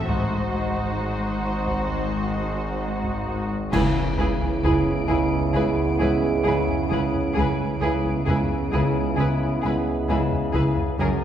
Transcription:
Already playing: A2 A3
0.07 G#1 G#2 D#4 F#4 C5, taiko
0.53 G#2
1.00 G#3
1.44 G#2
1.67 taiko
1.90 G#2
2.35 G#2
2.81 G#2
3.04 taiko
3.27 G#2
3.70 C#2 C#3 G#3 B3 E4 G#4 B4 C#5 D7, concert bass drum, taiko, crash
4.18 C#2 C#3 E4 G#4 B4
4.41 taiko
4.63 C#2 C#3 E4 G#4 B4, taiko low
5.07 C#2 C#3 E4 G#4 B4, taiko
5.54 C#2 C#3 E4 G#4 B4, taiko
5.99 C#2 C#4 E4 G#4 B4
6.44 C#2 C#3 E4 G#4 B4
6.68 taiko low
6.90 C#2 C#3 E4 G#4 B4, taiko
7.14 taiko low
7.34 C#2 C#3 G#3 B3 E4 G#4, taiko
7.39 B4
7.81 C#2 C#3 E4 G#4 B4
8.04 taiko
8.26 C#2 C#3 E4 G#4 B4, taiko low
8.72 C#2 C#3 E4 G#4 B4, taiko
9.16 C#2 C#3 E4 G#4 B4, taiko
9.62 C#2 C#4 E4 G#4 B4
10.09 C#2 C#3 E4 G#4 B4
10.32 taiko low
10.53 C#2 C#3 E4 G#4 B4, taiko
10.77 taiko low
10.98 F#1 C#2 F#2 C#3 G#3 A#3 C#4 F#4 G#4 A#4, taiko

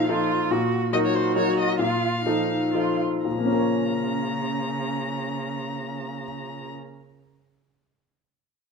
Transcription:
Already playing: A#2 F3 D#4 A4 F5
0.08 F3 D#4 F4 A4
0.51 A#2 F#4
0.93 F#3 D#4 F#4 A#4 D#5
1.06 C#5
1.15 C5
1.35 F#3 D#4 A#4 C#5
1.60 D#5
1.79 A#2 F4 F5
2.26 F3 D#4 A4
2.74 F3 D#4 F4 A4
3.25 A#2 C#3 A#5
3.31 F3
3.38 A#3
3.45 C#4
3.52 A#4
3.59 C#5

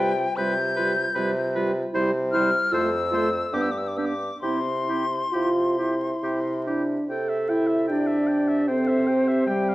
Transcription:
Already playing: C3 F4 B4 G5
0.00 G3
0.36 C3 G3 F4 B4 G6
0.76 F4 B4
0.80 G3
1.15 C3 G3 F4 B4
1.55 G3 F4 B4
1.93 C3 G3 E4 C5
2.32 E4 C5 F6
2.36 G3
2.71 F2 A3 F4 C5 E6
3.11 A3 F4 C5
3.53 G2 B3 D4 G4 D6
3.62 E6
3.71 D6
3.78 E6
3.88 D6
3.97 B3 D4 G4 E6
4.05 D6
4.41 C3 C4 E4 G4 C6
4.88 C4 E4 G4
5.32 C3 E4 F4 G4
5.78 E4 G4
6.23 C3 E4 G4
6.67 D4 E4 G4
7.09 C3 A4 G5
7.29 E5
7.49 E4 E5 G5
7.67 E5
7.88 D4 G4 D5 G5
8.07 E5
8.28 G5
8.48 E5
8.67 C4 A4 C5 G5
8.87 E5
9.07 G4 G5
9.28 E5
9.46 G3 G4 G5
9.69 F5

